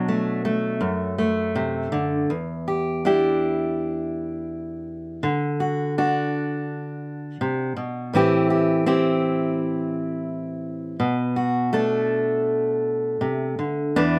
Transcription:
steel-string acoustic guitar
Already playing: B2 F#3 D4
0.08 A3
0.45 A3
0.81 F#2
1.18 A3
1.55 C3
1.92 D3
2.30 E2
2.68 G4
3.05 D4 E4 G4
5.23 D3
5.60 F#4
5.98 D4 F#4
7.41 C3
7.77 B2
8.13 A2 E3 C4 E4 G4
8.50 G4
8.86 C4 E4 G4
11.00 B2
11.36 F#4
11.73 A3 D4 A4
13.21 C3
13.59 D3
13.96 E2 E3 D4

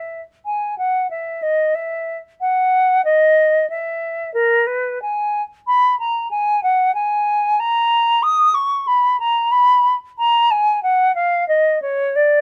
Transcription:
flute
Already playing: E5
0.46 G#5
0.78 F#5
1.10 E5
1.42 D#5
1.75 E5
2.41 F#5
3.05 D#5
3.70 E5
4.34 A#4
4.67 B4
5.02 G#5
5.67 B5
5.99 A#5
6.31 G#5
6.63 F#5
6.95 G#5
7.60 A#5
8.23 D#6
8.54 C#6
8.87 B5
9.20 A#5
9.52 B5
10.18 A#5
10.51 G#5
10.83 F#5
11.15 F5
11.48 D#5
11.82 C#5
12.16 D5

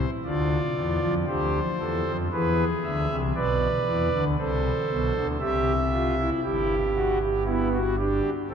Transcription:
pipe organ
Already playing: C5
0.25 D2 D3 F4 D5
0.76 E2 E3
1.02 F2 F3
1.27 D2 D3 G4 C5
1.79 E2 E3 A4
2.06 F2 F3
2.32 E2 E3 G#4 B4
2.84 D2 D3 E5
3.10 C2 C3
3.35 B1 B2 B4 D5
3.86 E2 E3
4.14 D2 D3
4.39 C2 C3 A4 C5
4.91 B1 B2
5.15 D2 D3
5.41 C2 C3 G4 E5
5.92 F4
6.18 E4
6.43 G1 G2 E4 G4
6.96 F#4
7.21 G4
7.45 B3 E4
7.73 F#4
7.97 D4 G4
8.50 A1 A2 C4 A4

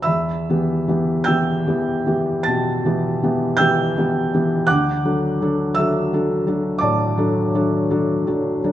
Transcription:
felt piano
0.02 E5 B5 E6
0.07 E2
0.49 E3 B3 G4
0.88 E3 B3 G4
1.24 E3 G4 G5 E6 G6
1.28 B3
1.67 E3 B3 G4
2.07 E3 B3 G4
2.43 A5 A6
2.47 B2
2.85 E3 B3 G4
3.23 E3 B3 G4
3.57 E3 B3 G4 G5 E6 G6
3.97 E3 B3 G4
4.34 E3 B3 G4
4.67 D2 F#5 D6 F#6
5.05 F#3 D4 A4
5.41 F#3 D4 A4
5.75 F#3 E5 E6
5.79 D4 A4
6.13 F#3 D4 A4
6.47 F#3 D4 A4
6.79 D5 A5 D6
6.83 A2
7.17 F#3 D4 A4
7.55 F#3 D4 A4
7.90 F#3 D4 A4
8.27 F#3 D4 A4
8.64 F#3 D4 A4

